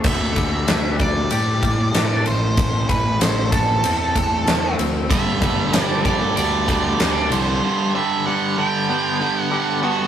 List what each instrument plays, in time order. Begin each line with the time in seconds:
0.04 fingered electric bass D2, clean electric guitar D3, lead electric guitar E5, kick, crash
0.36 fingered electric bass D2, clean electric guitar G3, kick, ride
0.68 fingered electric bass D2, clean electric guitar D4, snare, ride
1.00 clean electric guitar G3, lead electric guitar D5, kick, ride
1.31 fingered electric bass A2, clean electric guitar G4, lead electric guitar D5, ride
1.63 clean electric guitar G3, kick, ride
1.94 fingered electric bass A2, clean electric guitar D4, snare, ride
2.26 fingered electric bass A1, clean electric guitar A2, lead electric guitar C5, ride
2.57 fingered electric bass A1, clean electric guitar A2, kick, ride
2.89 fingered electric bass A1, clean electric guitar E3, lead electric guitar B4, kick, ride
3.21 fingered electric bass A1, clean electric guitar A3, lead electric guitar C5, snare, ride
3.52 clean electric guitar E3, lead electric guitar A4, kick, ride
3.84 fingered electric bass E2, clean electric guitar C4, ride
4.16 clean electric guitar E3, kick, ride
4.47 fingered electric bass E2, clean electric guitar A3, snare, ride
4.78 fingered electric bass D2, clean electric guitar C4, ride
5.10 fingered electric bass G1, distorted electric guitar G2 D3 G3, clean electric guitar G2, lead electric guitar E5, kick, ride
5.41 fingered electric bass G1, distorted electric guitar G2 D3 G3, clean electric guitar D3, kick, ride
5.73 fingered electric bass G1, distorted electric guitar G2 D3 G3, clean electric guitar G3, snare, ride
5.79 lead electric guitar D5
6.04 distorted electric guitar G2 D3 G3, clean electric guitar D3, lead electric guitar D5, kick, ride
6.36 fingered electric bass D2, distorted electric guitar G2 D3 G3, lead electric guitar D5, ride
6.68 distorted electric guitar G2 D3 G3, clean electric guitar D3, kick, ride
7.00 fingered electric bass D2, distorted electric guitar G2 D3 G3, clean electric guitar G3, snare, ride
7.30 fingered electric bass C2, distorted electric guitar G2 D3 G3, lead electric guitar C5, ride
7.63 clean electric guitar G2, distorted electric guitar G2 D3 G3
7.94 distorted electric guitar G2 D3 G3, clean electric guitar D3, lead electric guitar E5
8.26 distorted electric guitar G2 D3 G3, clean electric guitar G3, lead electric guitar F#5
8.57 distorted electric guitar G2 D3 G3, clean electric guitar D3, lead electric guitar G5
8.89 distorted electric guitar G2 D3 G3, clean electric guitar B3
9.20 distorted electric guitar G2 D3 G3, clean electric guitar D3
9.37 lead electric guitar F#5
9.51 distorted electric guitar G2 D3 G3, clean electric guitar G3
9.82 distorted electric guitar G2 D3 G3, clean electric guitar B3, lead electric guitar F#4 F#5